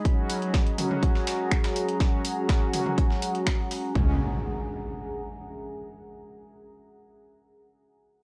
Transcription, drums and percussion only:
0.05 kick loud
0.05 closed hi-hat medium
0.30 closed hi-hat medium
0.30 open hi-hat loud
0.42 closed hi-hat soft
0.54 kick loud
0.54 snare loud
0.54 closed hi-hat medium
0.67 closed hi-hat soft
0.78 closed hi-hat medium
0.78 open hi-hat medium
0.78 mid tom medium
0.91 mid tom medium
1.03 kick loud
1.03 closed hi-hat medium
1.15 snare soft
1.27 snare loud
1.27 closed hi-hat medium
1.27 open hi-hat medium
1.51 finger snap loud
1.51 kick loud
1.51 closed hi-hat medium
1.64 snare loud
1.64 closed hi-hat medium
1.76 open hi-hat medium
1.89 closed hi-hat medium
2.00 kick loud
2.00 snare loud
2.00 closed hi-hat medium
2.25 closed hi-hat medium
2.25 open hi-hat loud
2.49 kick loud
2.49 snare loud
2.49 closed hi-hat medium
2.73 closed hi-hat medium
2.73 open hi-hat medium
2.73 mid tom medium
2.86 mid tom medium
2.98 kick loud
2.98 closed hi-hat medium
3.10 snare soft
3.22 closed hi-hat medium
3.22 open hi-hat loud
3.35 closed hi-hat soft
3.47 finger snap loud
3.47 kick loud
3.47 snare loud
3.47 closed hi-hat medium
3.71 open hi-hat medium
3.95 kick loud

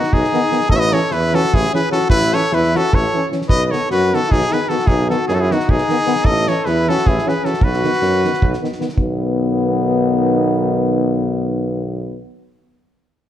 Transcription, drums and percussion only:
0.03 snare soft
0.13 kick medium
0.24 snare soft
0.34 snare soft
0.52 snare soft
0.61 snare soft
0.69 kick medium
0.93 snare soft
1.11 snare soft
1.34 snare soft
1.45 snare soft
1.54 kick loud
1.65 snare soft
1.75 snare soft
1.92 snare soft
2.01 snare soft
2.10 kick loud
2.22 snare soft
2.34 snare soft
2.52 snare soft
2.63 snare soft
2.75 snare soft
2.93 kick loud
3.32 snare soft
3.42 snare soft
3.49 kick loud
3.73 snare soft
3.91 snare soft
4.14 snare soft
4.23 snare soft
4.32 kick medium
4.41 snare soft
4.53 snare soft
4.70 snare soft
4.79 snare soft
4.87 kick loud
5.10 snare soft
5.28 snare soft
5.51 snare soft
5.60 snare soft
5.69 kick medium
5.78 snare soft
5.89 snare soft
6.07 snare soft
6.16 snare soft
6.25 kick loud
6.47 snare soft
6.66 snare soft
6.89 snare soft
6.98 snare soft
7.07 kick loud
7.18 snare soft
7.29 snare soft
7.45 snare soft
7.54 snare soft
7.61 kick loud
7.73 snare soft
7.84 snare soft
7.93 snare soft
8.02 snare soft
8.24 snare soft
8.33 snare soft
8.42 kick loud
8.53 snare soft
8.64 snare soft
8.72 snare soft
8.81 snare soft
8.89 snare soft
8.97 kick medium

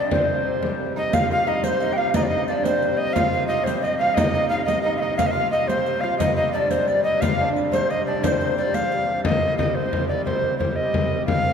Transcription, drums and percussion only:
0.11 frame drum medium
0.29 frame drum soft
0.63 frame drum medium
0.80 frame drum soft
1.13 riq medium
1.13 frame drum medium
1.30 frame drum soft
1.47 riq soft
1.64 riq medium
1.64 frame drum medium
1.80 riq soft
2.14 riq medium
2.14 frame drum medium
2.32 frame drum soft
2.48 riq soft
2.48 frame drum soft
2.65 riq medium
2.65 frame drum medium
2.82 riq soft
3.16 riq medium
3.16 frame drum medium
3.50 riq soft
3.50 frame drum soft
3.66 riq soft
3.66 frame drum medium
3.85 riq soft
4.17 riq medium
4.17 frame drum medium
4.34 riq soft
4.34 frame drum soft
4.51 riq soft
4.68 riq medium
4.68 frame drum medium
4.85 frame drum soft
5.02 frame drum soft
5.19 riq medium
5.19 frame drum medium
5.36 frame drum soft
5.53 riq soft
5.53 frame drum soft
5.69 riq medium
5.69 frame drum medium
5.86 riq soft
6.20 riq medium
6.20 frame drum medium
6.38 frame drum soft
6.54 riq soft
6.54 frame drum soft
6.71 riq soft
6.71 frame drum medium
6.88 riq soft
7.22 riq medium
7.22 frame drum medium
7.40 frame drum soft
7.56 riq soft
7.56 frame drum soft
7.73 riq soft
7.73 frame drum medium
7.90 riq soft
8.24 riq medium
8.24 frame drum medium
8.41 riq soft
8.58 riq soft
8.74 riq soft
8.74 frame drum medium
8.92 riq soft
9.09 frame drum soft
9.25 frame drum loud
9.59 frame drum medium
9.93 frame drum medium
10.27 frame drum medium
10.60 frame drum medium
10.94 frame drum medium
11.28 frame drum medium

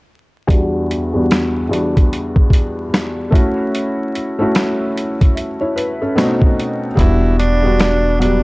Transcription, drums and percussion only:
0.49 kick loud
0.49 closed hi-hat medium
0.91 closed hi-hat medium
1.31 finger snap medium
1.31 snare loud
1.31 closed hi-hat medium
1.73 closed hi-hat medium
1.97 kick medium
1.97 closed hi-hat soft
2.13 closed hi-hat medium
2.36 kick medium
2.50 kick medium
2.50 closed hi-hat medium
2.94 finger snap medium
2.94 snare medium
2.94 closed hi-hat medium
3.32 kick loud
3.32 closed hi-hat medium
3.75 closed hi-hat medium
4.15 closed hi-hat medium
4.55 finger snap medium
4.55 snare loud
4.55 closed hi-hat medium
4.97 closed hi-hat medium
5.21 kick medium
5.21 closed hi-hat soft
5.37 closed hi-hat medium
5.78 closed hi-hat medium
6.18 finger snap medium
6.18 snare medium
6.18 closed hi-hat medium
6.42 kick medium
6.59 closed hi-hat medium
6.97 kick loud
6.97 closed hi-hat medium
7.40 closed hi-hat medium
7.80 finger snap medium
7.80 snare loud
7.80 closed hi-hat medium
8.22 closed hi-hat medium

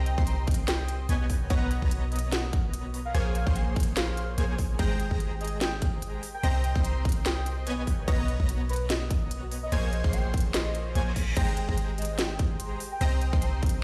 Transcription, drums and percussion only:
0.06 closed hi-hat medium
0.18 kick loud
0.27 closed hi-hat medium
0.47 kick loud
0.47 closed hi-hat medium
0.51 closed hi-hat medium
0.54 closed hi-hat medium
0.68 snare loud
0.68 closed hi-hat medium
0.88 closed hi-hat medium
1.09 closed hi-hat medium
1.30 kick medium
1.30 open hi-hat medium
1.50 kick loud
1.50 closed hi-hat medium
1.71 closed hi-hat medium
1.82 kick medium
1.91 closed hi-hat medium
2.12 closed hi-hat medium
2.16 closed hi-hat medium
2.19 closed hi-hat medium
2.32 snare loud
2.32 closed hi-hat medium
2.53 kick loud
2.53 closed hi-hat medium
2.74 closed hi-hat medium
2.94 open hi-hat medium
3.15 closed hi-hat medium
3.35 closed hi-hat medium
3.47 kick loud
3.56 closed hi-hat medium
3.76 kick loud
3.76 closed hi-hat soft
3.80 closed hi-hat medium
3.83 closed hi-hat medium
3.97 snare loud
3.97 closed hi-hat medium
4.17 closed hi-hat medium
4.38 closed hi-hat medium
4.58 kick medium
4.58 open hi-hat medium
4.79 kick loud
4.79 closed hi-hat medium
4.79 crash soft
5.00 closed hi-hat medium
5.11 kick medium
5.20 closed hi-hat medium
5.41 closed hi-hat soft
5.45 closed hi-hat medium
5.48 closed hi-hat medium
5.61 snare loud
5.61 closed hi-hat medium
5.82 kick loud
5.82 closed hi-hat medium
6.02 closed hi-hat medium
6.23 open hi-hat medium
6.43 closed hi-hat medium
6.43 crash soft
6.64 closed hi-hat medium
6.75 kick loud
6.85 closed hi-hat medium
7.05 kick loud
7.05 closed hi-hat soft
7.09 closed hi-hat medium
7.12 closed hi-hat medium
7.26 snare loud
7.26 closed hi-hat medium
7.46 closed hi-hat medium
7.67 closed hi-hat medium
7.87 kick medium
7.87 open hi-hat medium
8.08 kick loud
8.08 closed hi-hat medium
8.08 crash soft
8.28 closed hi-hat medium
8.40 kick medium
8.49 closed hi-hat medium
8.69 closed hi-hat soft
8.73 closed hi-hat medium
8.76 closed hi-hat medium
8.90 snare loud
8.90 closed hi-hat medium
9.11 kick loud
9.11 closed hi-hat medium
9.31 closed hi-hat medium
9.52 open hi-hat loud
9.72 closed hi-hat medium
9.72 crash soft
9.93 closed hi-hat medium
10.04 kick loud
10.13 closed hi-hat medium
10.34 kick loud
10.34 closed hi-hat medium
10.38 closed hi-hat medium
10.40 closed hi-hat medium
10.54 snare loud
10.54 closed hi-hat medium
10.75 closed hi-hat medium
10.95 closed hi-hat medium
11.16 kick medium
11.16 open hi-hat loud
11.37 kick loud
11.37 closed hi-hat medium
11.37 crash medium
11.37 crash soft
11.57 closed hi-hat medium
11.69 kick medium
11.78 closed hi-hat medium
11.98 closed hi-hat medium
12.02 closed hi-hat medium
12.05 closed hi-hat medium
12.19 snare loud
12.19 closed hi-hat medium
12.39 kick loud
12.39 closed hi-hat medium
12.60 closed hi-hat medium
12.80 open hi-hat loud
13.01 closed hi-hat medium
13.01 crash soft
13.21 closed hi-hat medium
13.33 kick loud
13.42 closed hi-hat medium
13.63 kick loud
13.63 closed hi-hat medium
13.66 closed hi-hat medium
13.69 closed hi-hat medium

